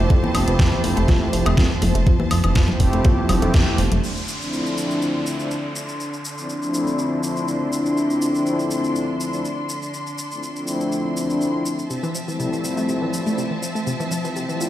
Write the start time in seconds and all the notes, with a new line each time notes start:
Already playing: F3 A3 C4 E4 G4 C5 A5
0.10 F2 C3, kick, closed hi-hat
0.23 E3, high conga
0.34 F1 F3, open hi-hat, high woodblock
0.47 F1 E3 F3 A3 C4 E4 G4, closed hi-hat
0.59 F2 C3, kick, snare, closed hi-hat
0.71 E3 F3 A3 C4 E4 G4, high conga
0.84 F1 F3, open hi-hat
0.97 F1 A3, closed hi-hat
1.08 F2 C3, kick, snare, closed hi-hat, high conga
1.21 E3
1.33 F1 F3, open hi-hat
1.46 F1 F3 A3 C4 E4 G4, closed hi-hat, high conga, high woodblock
1.57 F2 C3, kick, snare, closed hi-hat, low conga
1.70 E3
1.82 F1 F3, open hi-hat, high conga, low conga
1.95 F1 A3, closed hi-hat
2.06 F2 C3, kick, closed hi-hat
2.19 E3, high conga
2.31 F1 F3, open hi-hat, high woodblock
2.44 F1 E3 F3 A3 C4 E4 G4, closed hi-hat, high woodblock
2.55 F2 C3, kick, snare, closed hi-hat
2.68 E3 F3 A3 C4 E4 G4, high conga, low conga
2.80 F1 F3, kick, open hi-hat
2.93 F1 A3, closed hi-hat
3.05 F2 C3, kick, closed hi-hat, high conga
3.18 E3
3.29 F1 F3 A3 C4 E4 G4, open hi-hat, low conga, high woodblock
3.42 F1 A3, closed hi-hat, high conga
3.54 F2 C3, kick, snare, closed hi-hat
3.66 E3 F3 A3 C4 E4 G4
3.78 F1 F3, open hi-hat, high conga
3.92 F1 A3, closed hi-hat, low conga
4.03 D3 D4 C6, downlifter, shaker
4.17 shaker
4.28 shaker
4.40 F3 A3 C4 D4 E4, shaker
4.53 shaker
4.65 F3 A3 C4 D4 E4, shaker
4.78 shaker
4.91 shaker
5.02 shaker
5.27 shaker
5.39 F3 A3 C4 D4 E4, shaker
5.51 shaker
5.76 shaker
5.89 shaker
6.00 shaker
6.13 shaker
6.25 shaker
6.38 F3 A3 C4 D4 E4, shaker
6.49 shaker
6.62 F3 A3 C4 D4 E4, shaker
6.74 shaker
6.87 shaker
6.99 shaker
7.23 shaker
7.37 shaker
7.48 shaker
7.73 shaker
7.86 shaker
7.97 shaker
8.10 shaker
8.22 shaker
8.34 F3 A3 C4 D4 E4, shaker
8.46 shaker
8.58 F3 A3 C4 D4 E4, shaker
8.71 shaker
8.84 shaker
8.96 shaker
9.20 shaker
9.33 F3 A3 C4 D4 E4, shaker
9.45 shaker
9.69 shaker
9.82 shaker
9.94 shaker
10.07 shaker
10.18 shaker
10.31 F3 A3 C4 D4 E4, shaker
10.43 shaker
10.55 F3 A3 C4 D4 E4, shaker
10.67 shaker
10.81 shaker
10.92 shaker
11.16 F3 A3 C4 D4 E4, shaker
11.30 shaker
11.41 shaker
11.54 F3 A3 C4 D4 E4
11.66 shaker
11.79 shaker
11.90 C3 F3 C4 E5 A5, shaker
12.03 E3, shaker
12.15 F3, shaker
12.28 E3 F3 G3 A3 C4 E4, shaker
12.40 C3, shaker
12.51 E3 F3 G3 A3 C4 E4, shaker
12.64 F3, shaker
12.77 A3, shaker
12.89 C3, shaker
13.02 E3
13.13 F3, shaker
13.26 F3 G3 A3 C4 E4, shaker
13.38 C3, shaker
13.51 E3
13.62 F3, shaker
13.75 A3, shaker
13.87 C3, shaker
14.00 E3, shaker
14.11 F3, shaker
14.24 E3 F3 G3 A3 C4 E4, shaker
14.36 C3, shaker
14.48 E3 F3 G3 A3 C4 E4, shaker
14.61 F3, shaker